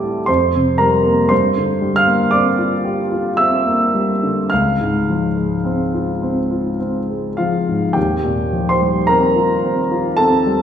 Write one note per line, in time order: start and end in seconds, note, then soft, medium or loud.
0.00 0.25 D2 soft
0.00 0.31 A2 soft
0.00 0.30 G3 soft
0.00 0.30 A3 soft
0.00 0.31 C4 soft
0.00 0.03 E4 soft
0.00 0.29 E4 soft
0.00 0.18 G4 soft
0.00 0.30 A4 medium
0.00 0.24 D5 medium
0.00 0.31 A5 medium
0.00 0.28 D6 medium
0.26 1.28 F2 soft
0.26 0.77 C5 medium
0.26 0.80 C6 medium
0.56 0.96 C3 soft
0.78 1.21 G3 soft
0.78 1.27 A#4 soft
0.78 1.30 A#5 medium
1.07 1.32 A#3 soft
1.29 4.46 G2 soft
1.29 1.93 C5 medium
1.29 1.97 C6 medium
1.57 1.97 D3 soft
1.81 2.22 G3 soft
1.96 2.29 F5 medium
1.96 2.31 F6 medium
2.07 2.48 A#3 soft
2.31 2.74 C4 soft
2.31 3.34 D5 medium
2.31 3.38 D6 medium
2.59 3.01 F4 soft
2.85 3.28 G4 soft
3.12 3.55 F4 soft
3.37 3.83 C4 soft
3.37 4.46 E5 medium
3.37 4.50 E6 medium
3.66 4.11 A#3 soft
3.95 4.39 G3 soft
4.23 4.51 D3 soft
4.50 7.93 C#2 soft
4.50 6.76 F5 medium
4.50 6.79 F6 medium
4.81 5.26 G#2 soft
5.09 5.54 F3 soft
5.37 5.82 G#3 soft
5.65 6.10 C4 soft
5.94 6.39 F4 soft
6.22 6.68 C4 soft
6.51 6.98 F4 soft
6.80 7.27 C4 soft
7.10 7.57 G#3 soft
7.37 7.85 F3 soft
7.37 7.92 F4 soft
7.37 7.95 F5 medium
7.69 7.97 G#2 soft
7.93 10.62 D#2 soft
7.93 8.67 G4 soft
7.93 8.70 G5 medium
8.24 8.70 A#2 soft
8.53 8.98 F3 soft
8.69 9.06 C5 soft
8.69 9.08 C6 medium
8.81 9.26 G3 soft
9.07 9.54 C4 soft
9.07 10.15 A#4 medium
9.07 10.19 A#5 medium
9.36 9.80 F4 soft
9.64 10.09 C4 soft
9.91 10.36 F4 soft
10.17 10.62 C4 soft
10.17 10.62 A4 medium
10.17 10.62 A5 medium
10.47 10.62 G3 soft